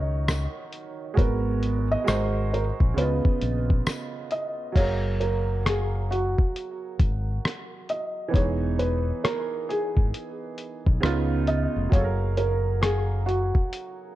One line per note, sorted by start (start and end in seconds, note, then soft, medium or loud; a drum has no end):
0.00 0.46 C#2 medium
0.00 1.12 D#3 medium
0.00 1.13 D#4 medium
0.00 1.14 F#4 medium
0.00 1.16 C#5 medium
0.00 0.70 D#5 medium
0.28 cross-stick loud
0.28 closed hi-hat medium
0.28 tambourine medium
0.73 closed hi-hat medium
1.14 1.95 G#1 loud
1.14 2.03 G#3 medium
1.14 2.07 B3 medium
1.14 2.04 F#4 medium
1.14 2.05 A#4 medium
1.14 kick loud
1.18 1.87 A#4 medium
1.18 closed hi-hat medium
1.63 closed hi-hat medium
1.92 2.54 D#5 loud
2.04 2.70 G#1 medium
2.04 2.95 G#3 medium
2.04 2.96 F#4 medium
2.04 2.97 A#4 medium
2.04 cross-stick loud
2.04 tambourine medium
2.08 2.97 C5 medium
2.08 closed hi-hat loud
2.53 2.63 A#4 medium
2.53 closed hi-hat medium
2.80 2.95 A#1 medium
2.80 kick medium
2.94 3.21 C#2 loud
2.94 4.71 C#3 medium
2.94 4.72 B3 medium
2.94 closed hi-hat medium
2.98 4.74 F4 medium
2.98 4.28 B4 medium
2.98 4.75 D#5 medium
3.25 kick medium
3.41 3.80 A#1 medium
3.41 closed hi-hat medium
3.70 kick loud
3.87 cross-stick loud
3.87 closed hi-hat medium
3.87 tambourine medium
4.31 4.78 D#5 medium
4.31 closed hi-hat medium
4.72 6.34 F#1 medium
4.72 8.28 F#3 medium
4.72 5.22 C#5 medium
4.72 8.30 F5 medium
4.72 kick loud
4.72 crash medium
4.77 8.31 G#4 medium
4.77 8.32 A#4 medium
4.77 closed hi-hat medium
5.20 5.62 A#4 medium
5.20 closed hi-hat medium
5.66 6.12 G#4 medium
5.66 cross-stick loud
5.66 closed hi-hat loud
6.11 7.95 F#4 medium
6.11 closed hi-hat medium
6.38 kick medium
6.56 closed hi-hat medium
6.99 7.38 G#1 medium
6.99 kick loud
6.99 closed hi-hat medium
7.45 cross-stick loud
7.45 closed hi-hat medium
7.89 8.36 D#5 medium
7.89 closed hi-hat medium
8.28 10.96 E3 medium
8.28 10.97 B3 medium
8.34 9.11 E1 loud
8.34 10.99 D#4 medium
8.34 11.00 G#4 medium
8.34 8.80 C#5 medium
8.34 kick loud
8.34 closed hi-hat medium
8.79 9.25 B4 medium
8.79 closed hi-hat medium
9.24 9.70 A#4 medium
9.24 cross-stick loud
9.24 closed hi-hat loud
9.69 11.53 G#4 medium
9.69 closed hi-hat medium
9.97 10.11 G#1 medium
9.97 kick medium
10.14 closed hi-hat medium
10.58 closed hi-hat medium
10.86 11.01 B1 medium
10.86 kick medium
11.00 11.66 C#2 loud
11.00 11.91 C#3 medium
11.00 11.92 B3 medium
11.00 11.92 D#4 medium
11.00 11.93 F4 medium
11.00 cross-stick loud
11.06 closed hi-hat medium
11.47 11.89 D#5 medium
11.47 closed hi-hat medium
11.76 11.90 F1 medium
11.89 13.51 F#1 loud
11.89 14.11 F#3 medium
11.89 12.38 C#5 medium
11.89 14.12 F5 medium
11.89 kick loud
11.89 closed hi-hat medium
11.95 14.13 G#4 medium
11.95 12.03 A4 medium
12.04 14.15 A#4 medium
12.37 12.83 A#4 medium
12.37 closed hi-hat medium
12.82 13.28 G#4 medium
12.82 cross-stick loud
12.82 closed hi-hat medium
13.26 14.15 F#4 medium
13.26 closed hi-hat medium
13.55 kick medium
13.73 closed hi-hat medium